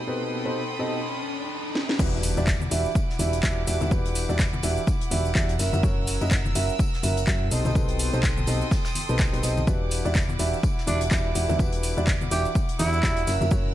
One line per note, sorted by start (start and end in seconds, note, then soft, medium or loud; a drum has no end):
0.00 1.97 A4 medium
0.00 1.97 G5 medium
0.00 1.97 B5 medium
0.00 1.97 C6 medium
0.00 1.97 D#6 medium
0.00 riser medium
0.07 0.42 B2 medium
0.07 0.42 C4 medium
0.07 0.42 D#4 medium
0.07 0.42 G4 medium
0.07 0.42 A4 medium
0.07 0.42 B4 medium
0.45 0.59 B2 medium
0.45 0.59 C4 medium
0.45 0.59 D#4 medium
0.45 0.59 G4 medium
0.45 0.59 A4 medium
0.45 0.59 C5 medium
0.79 0.96 B2 medium
0.79 0.96 C4 medium
0.79 0.96 D#4 medium
0.79 0.96 G4 medium
0.79 0.96 A4 medium
0.79 0.96 D#5 loud
1.75 snare medium
1.89 snare medium
1.99 2.34 E1 loud
1.99 2.34 E3 medium
1.99 2.34 D4 medium
1.99 5.56 E4 medium
1.99 2.34 E4 medium
1.99 2.34 F#4 medium
1.99 2.34 G4 medium
1.99 2.34 B4 medium
1.99 7.47 F#5 medium
1.99 5.56 D6 medium
1.99 kick loud
1.99 crash loud
1.99 tambourine soft
1.99 tambourine medium
1.99 impact medium
1.99 cabasa soft
2.23 open hi-hat loud
2.23 tambourine medium
2.23 cabasa medium
2.37 2.69 E1 medium
2.37 2.51 E3 medium
2.37 2.51 D4 medium
2.37 2.51 E4 medium
2.37 2.51 F#4 medium
2.37 2.51 G4 medium
2.37 2.51 D5 loud
2.37 tambourine medium
2.37 cabasa soft
2.47 kick loud
2.47 snare loud
2.47 clap loud
2.47 tambourine medium
2.47 cabasa soft
2.61 high conga medium
2.61 cabasa soft
2.71 2.86 E1 medium
2.71 2.88 E3 medium
2.71 2.88 D4 medium
2.71 2.88 E4 medium
2.71 2.88 F#4 medium
2.71 2.88 G4 medium
2.71 2.88 E5 loud
2.71 open hi-hat medium
2.71 tambourine medium
2.71 cabasa medium
2.85 tambourine soft
2.85 cabasa soft
2.95 kick loud
2.95 tambourine medium
2.95 tambourine soft
2.95 cabasa soft
3.10 snare soft
3.19 3.41 E1 loud
3.19 3.36 E3 medium
3.19 3.36 D4 medium
3.19 3.36 E4 medium
3.19 3.36 F#4 medium
3.19 3.36 G4 medium
3.19 3.36 E5 medium
3.19 open hi-hat loud
3.19 tambourine medium
3.19 high conga medium
3.19 cabasa medium
3.33 closed hi-hat soft
3.33 tambourine medium
3.33 cabasa soft
3.43 3.65 E1 loud
3.43 3.60 E3 loud
3.43 3.60 D4 medium
3.43 3.60 E4 medium
3.43 3.60 F#4 medium
3.43 3.60 G4 medium
3.43 3.60 E5 loud
3.43 kick loud
3.43 snare loud
3.43 clap loud
3.43 tambourine soft
3.43 tambourine medium
3.43 cabasa soft
3.67 3.78 E1 loud
3.67 3.79 E3 medium
3.67 3.79 D4 medium
3.67 3.79 E4 medium
3.67 3.79 F#4 medium
3.67 3.79 G4 medium
3.67 3.79 E5 medium
3.67 open hi-hat loud
3.67 tambourine medium
3.67 tambourine loud
3.67 cabasa medium
3.81 3.89 E1 loud
3.81 3.89 E3 medium
3.81 3.89 D4 medium
3.81 3.89 E4 medium
3.81 3.89 F#4 medium
3.81 3.89 G4 medium
3.81 3.89 E5 medium
3.81 tambourine medium
3.81 high conga medium
3.81 cabasa soft
3.91 4.26 E1 medium
3.91 4.26 E3 medium
3.91 4.26 D4 medium
3.91 4.26 E4 medium
3.91 4.26 F#4 medium
3.91 4.26 G4 medium
3.91 4.26 B4 medium
3.91 kick loud
3.91 tambourine medium
3.91 tambourine soft
3.91 cabasa soft
4.06 closed hi-hat soft
4.15 open hi-hat loud
4.15 tambourine loud
4.15 tambourine medium
4.15 cabasa medium
4.29 4.61 E1 medium
4.29 4.43 E3 medium
4.29 4.43 D4 medium
4.29 4.43 E4 medium
4.29 4.43 F#4 medium
4.29 4.43 G4 medium
4.29 4.43 D5 loud
4.29 tambourine medium
4.29 cabasa soft
4.39 kick loud
4.39 snare loud
4.39 clap loud
4.39 tambourine medium
4.39 cabasa soft
4.53 high conga loud
4.53 cabasa soft
4.63 4.78 E1 medium
4.63 4.80 E3 medium
4.63 4.80 D4 medium
4.63 4.80 E4 medium
4.63 4.80 F#4 medium
4.63 4.80 G4 medium
4.63 4.80 E5 loud
4.63 open hi-hat loud
4.63 tambourine medium
4.63 tambourine loud
4.63 cabasa medium
4.77 tambourine medium
4.77 cabasa soft
4.87 kick loud
4.87 tambourine soft
4.87 tambourine medium
4.87 cabasa soft
5.01 closed hi-hat soft
5.11 5.33 E1 loud
5.11 5.28 E3 medium
5.11 5.28 D4 medium
5.11 5.28 E4 medium
5.11 5.28 F#4 medium
5.11 5.28 G4 medium
5.11 5.28 E5 medium
5.11 open hi-hat loud
5.11 tambourine medium
5.11 high conga medium
5.11 cabasa medium
5.25 tambourine medium
5.25 cabasa soft
5.35 5.57 E2 loud
5.35 5.52 D4 loud
5.35 5.52 E4 medium
5.35 5.52 F#4 medium
5.35 5.52 G4 medium
5.35 5.52 E5 loud
5.35 kick loud
5.35 snare loud
5.35 clap loud
5.35 tambourine medium
5.35 cabasa soft
5.49 closed hi-hat soft
5.59 5.71 F#1 loud
5.59 5.71 F#3 medium
5.59 5.71 C#4 medium
5.59 5.71 E4 medium
5.59 5.71 F#4 medium
5.59 5.71 A#4 medium
5.59 7.49 A#4 medium
5.59 5.71 E5 medium
5.59 7.49 E6 medium
5.59 snare soft
5.59 open hi-hat loud
5.59 tambourine loud
5.59 tambourine medium
5.59 cabasa medium
5.73 5.81 F#1 loud
5.73 5.81 F#3 medium
5.73 5.81 C#4 medium
5.73 5.81 E4 medium
5.73 5.81 F#4 medium
5.73 5.81 A#4 medium
5.73 5.81 E5 medium
5.73 tambourine medium
5.73 high conga loud
5.73 cabasa soft
5.83 6.18 F#1 medium
5.83 6.18 F#3 medium
5.83 6.18 C#4 medium
5.83 6.18 E4 medium
5.83 6.18 F#4 medium
5.83 6.18 A#4 medium
5.83 6.18 C#5 medium
5.83 kick loud
5.83 tambourine medium
5.83 tambourine soft
5.83 cabasa soft
6.07 open hi-hat loud
6.07 tambourine medium
6.07 tambourine loud
6.07 cabasa medium
6.21 6.53 F#1 loud
6.21 6.35 F#3 medium
6.21 6.35 C#4 medium
6.21 6.35 E4 medium
6.21 6.35 F#4 medium
6.21 6.35 A#4 medium
6.21 6.35 D#5 loud
6.21 tambourine medium
6.21 cabasa soft
6.31 kick loud
6.31 snare loud
6.31 clap loud
6.31 tambourine medium
6.31 cabasa soft
6.45 high conga medium
6.45 cabasa soft
6.55 6.70 F#1 medium
6.55 6.72 F#3 medium
6.55 6.72 C#4 medium
6.55 6.72 E4 medium
6.55 6.72 F#4 medium
6.55 6.72 A#4 medium
6.55 6.72 E5 loud
6.55 open hi-hat loud
6.55 tambourine medium
6.55 tambourine loud
6.55 cabasa medium
6.69 tambourine medium
6.69 cabasa soft
6.79 kick loud
6.79 tambourine soft
6.79 tambourine medium
6.79 cabasa soft
6.93 snare soft
7.03 7.25 F#1 loud
7.03 7.20 F#3 medium
7.03 7.20 C#4 medium
7.03 7.20 E4 medium
7.03 7.20 F#4 medium
7.03 7.20 A#4 medium
7.03 7.20 E5 medium
7.03 open hi-hat loud
7.03 tambourine loud
7.03 tambourine medium
7.03 high conga medium
7.03 cabasa medium
7.17 closed hi-hat soft
7.17 tambourine medium
7.17 cabasa soft
7.27 7.49 F#2 medium
7.27 7.44 C#4 loud
7.27 7.44 E4 medium
7.27 7.44 F#4 medium
7.27 7.44 A#4 medium
7.27 7.44 E5 loud
7.27 kick loud
7.27 snare loud
7.27 clap loud
7.27 tambourine medium
7.27 cabasa soft
7.51 7.62 B1 medium
7.51 7.63 B2 medium
7.51 7.63 C4 medium
7.51 7.63 D#4 medium
7.51 7.63 G4 medium
7.51 9.65 A4 medium
7.51 7.63 A4 medium
7.51 7.63 D#5 medium
7.51 9.65 G5 medium
7.51 9.65 C6 medium
7.51 9.65 D#6 medium
7.51 open hi-hat loud
7.51 tambourine loud
7.51 tambourine medium
7.51 cabasa medium
7.65 7.73 B1 loud
7.65 7.73 B2 medium
7.65 7.73 C4 medium
7.65 7.73 D#4 medium
7.65 7.73 G4 medium
7.65 7.73 A4 medium
7.65 7.73 D#5 medium
7.65 tambourine medium
7.65 high conga loud
7.65 cabasa soft
7.75 8.10 B1 loud
7.75 8.10 B2 medium
7.75 8.10 C4 medium
7.75 8.10 G4 medium
7.75 8.10 A4 medium
7.75 8.10 B4 medium
7.75 kick loud
7.75 tambourine medium
7.75 cabasa soft
7.89 closed hi-hat soft
7.99 open hi-hat loud
7.99 tambourine medium
7.99 cabasa medium
8.13 8.45 B1 loud
8.13 8.27 B2 medium
8.13 8.27 C4 medium
8.13 8.27 D#4 medium
8.13 8.27 G4 medium
8.13 8.27 A4 medium
8.13 8.27 C5 loud
8.13 tambourine medium
8.13 cabasa soft
8.23 kick loud
8.23 snare loud
8.23 clap loud
8.23 tambourine medium
8.23 cabasa soft
8.37 high conga loud
8.37 cabasa soft
8.47 8.62 B1 medium
8.47 8.64 B2 medium
8.47 8.64 C4 medium
8.47 8.64 D#4 medium
8.47 8.64 G4 medium
8.47 8.64 A4 medium
8.47 8.64 D#5 loud
8.47 open hi-hat loud
8.47 tambourine medium
8.47 tambourine loud
8.47 cabasa medium
8.61 tambourine medium
8.61 cabasa soft
8.71 kick loud
8.71 snare loud
8.71 tambourine medium
8.71 tambourine soft
8.71 cabasa soft
8.85 snare loud
8.85 tambourine medium
8.95 open hi-hat loud
8.95 tambourine medium
8.95 tambourine loud
8.95 high conga medium
8.95 cabasa medium
9.09 9.30 B1 loud
9.09 9.30 B2 medium
9.09 9.30 C4 medium
9.09 9.30 D#4 medium
9.09 9.30 G4 medium
9.09 9.30 A4 medium
9.09 9.30 B4 medium
9.09 tambourine medium
9.09 cabasa soft
9.18 kick loud
9.18 snare loud
9.18 clap loud
9.18 tambourine loud
9.18 cabasa soft
9.33 9.41 B1 loud
9.33 9.41 B2 medium
9.33 9.41 C4 medium
9.33 9.41 D#4 medium
9.33 9.41 G4 medium
9.33 9.41 A4 medium
9.33 9.41 B4 medium
9.33 closed hi-hat soft
9.43 9.65 B1 medium
9.43 9.60 C4 medium
9.43 9.60 D#4 medium
9.43 9.60 G4 medium
9.43 9.60 A4 medium
9.43 9.60 D#5 loud
9.43 snare soft
9.43 open hi-hat loud
9.43 tambourine medium
9.43 tambourine loud
9.43 cabasa medium
9.57 tambourine medium
9.57 high conga medium
9.57 cabasa soft
9.67 10.02 E1 medium
9.67 10.02 E3 medium
9.67 10.02 D4 medium
9.67 10.02 E4 medium
9.67 13.24 E4 medium
9.67 10.02 F#4 medium
9.67 10.02 G4 medium
9.67 10.02 B4 medium
9.67 13.74 F#5 medium
9.67 13.24 D6 medium
9.67 kick loud
9.67 tambourine soft
9.67 tambourine medium
9.67 cabasa soft
9.91 open hi-hat loud
9.91 tambourine medium
9.91 cabasa medium
10.05 10.37 E1 medium
10.05 10.19 E3 medium
10.05 10.19 D4 medium
10.05 10.19 E4 medium
10.05 10.19 F#4 medium
10.05 10.19 G4 medium
10.05 10.19 D5 loud
10.05 tambourine medium
10.05 cabasa soft
10.15 kick loud
10.15 snare loud
10.15 clap loud
10.15 tambourine medium
10.15 cabasa soft
10.29 high conga medium
10.29 cabasa soft
10.39 10.54 E1 medium
10.39 10.56 E3 medium
10.39 10.56 D4 medium
10.39 10.56 E4 medium
10.39 10.56 F#4 medium
10.39 10.56 G4 medium
10.39 10.56 E5 loud
10.39 open hi-hat medium
10.39 tambourine medium
10.39 cabasa medium
10.53 tambourine medium
10.53 cabasa soft
10.63 kick loud
10.63 tambourine medium
10.63 tambourine soft
10.63 cabasa soft
10.78 snare soft
10.87 11.09 E1 loud
10.87 11.04 E3 medium
10.87 11.04 D4 medium
10.87 11.02 D4 loud
10.87 11.04 E4 medium
10.87 11.04 F#4 medium
10.87 11.04 G4 medium
10.87 11.04 E5 medium
10.87 open hi-hat loud
10.87 tambourine medium
10.87 high conga medium
10.87 cabasa medium
11.01 closed hi-hat soft
11.01 tambourine medium
11.01 cabasa soft
11.10 11.33 E1 loud
11.10 11.28 E3 loud
11.10 11.28 D4 loud
11.10 11.28 E4 loud
11.10 11.28 F#4 medium
11.10 11.28 G4 medium
11.10 11.28 E5 loud
11.10 kick loud
11.10 snare loud
11.10 clap loud
11.10 tambourine soft
11.10 tambourine loud
11.10 cabasa soft
11.35 11.46 E1 loud
11.35 11.47 E3 medium
11.35 11.47 D4 medium
11.35 11.47 E4 medium
11.35 11.47 F#4 medium
11.35 11.47 G4 medium
11.35 11.47 E5 medium
11.35 open hi-hat medium
11.35 tambourine medium
11.35 tambourine loud
11.35 cabasa medium
11.49 11.57 E1 loud
11.49 11.57 E3 medium
11.49 11.57 D4 medium
11.49 11.57 E4 medium
11.49 11.57 F#4 medium
11.49 11.57 G4 medium
11.49 11.57 E5 medium
11.49 tambourine medium
11.49 high conga loud
11.49 cabasa soft
11.59 11.94 E1 medium
11.59 11.94 E3 medium
11.59 11.94 D4 medium
11.59 11.94 E4 medium
11.59 11.94 F#4 medium
11.59 11.94 G4 medium
11.59 11.94 B4 medium
11.59 kick loud
11.59 tambourine soft
11.59 tambourine medium
11.59 cabasa soft
11.73 closed hi-hat soft
11.83 open hi-hat loud
11.83 tambourine medium
11.83 cabasa medium
11.97 12.29 E1 loud
11.97 12.11 E3 medium
11.97 12.11 D4 medium
11.97 12.11 E4 medium
11.97 12.11 F#4 medium
11.97 12.11 G4 medium
11.97 12.11 D5 loud
11.97 tambourine soft
11.97 cabasa soft
12.07 kick loud
12.07 snare loud
12.07 clap loud
12.07 tambourine medium
12.07 cabasa soft
12.21 high conga loud
12.21 cabasa soft
12.31 12.46 E1 medium
12.31 12.48 E3 medium
12.31 12.48 D4 medium
12.31 12.48 E4 medium
12.31 12.48 F#4 medium
12.31 12.48 G4 medium
12.31 12.46 G4 medium
12.31 12.48 E5 loud
12.31 open hi-hat medium
12.31 tambourine loud
12.31 tambourine medium
12.31 cabasa medium
12.45 tambourine medium
12.45 cabasa soft
12.55 kick loud
12.55 tambourine medium
12.55 tambourine soft
12.55 cabasa soft
12.69 closed hi-hat soft
12.79 13.01 E2 loud
12.79 12.96 E3 medium
12.79 12.96 D4 medium
12.79 12.96 E4 medium
12.79 13.33 E4 loud
12.79 12.96 F#4 medium
12.79 12.96 G4 medium
12.79 12.96 E5 medium
12.79 open hi-hat loud
12.79 tambourine medium
12.79 high conga medium
12.79 cabasa medium
12.93 tambourine medium
12.93 cabasa soft
13.03 13.25 E1 loud
13.03 13.20 D4 loud
13.03 13.20 E4 medium
13.03 13.20 F#4 medium
13.03 13.20 G4 medium
13.03 kick loud
13.03 snare loud
13.03 clap loud
13.03 tambourine loud
13.03 cabasa soft
13.17 closed hi-hat soft
13.27 13.38 F#1 loud
13.27 13.39 F#3 medium
13.27 13.39 C#4 medium
13.27 13.39 E4 medium
13.27 13.39 F#4 medium
13.27 13.39 A#4 medium
13.27 13.74 A#4 medium
13.27 13.39 E5 medium
13.27 13.74 E6 medium
13.27 snare soft
13.27 open hi-hat medium
13.27 tambourine loud
13.27 tambourine medium
13.27 cabasa medium
13.41 13.49 F#1 loud
13.41 13.49 F#3 medium
13.41 13.49 C#4 medium
13.41 13.49 E4 medium
13.41 13.49 F#4 medium
13.41 13.49 A#4 medium
13.41 13.49 E5 medium
13.41 tambourine medium
13.41 high conga medium
13.41 cabasa soft
13.51 13.74 F#1 loud
13.51 13.74 F#3 medium
13.51 13.74 C#4 medium
13.51 13.74 E4 medium
13.51 13.74 F#4 medium
13.51 13.74 A#4 medium
13.51 13.74 C#5 medium
13.51 kick loud
13.51 tambourine medium
13.51 cabasa soft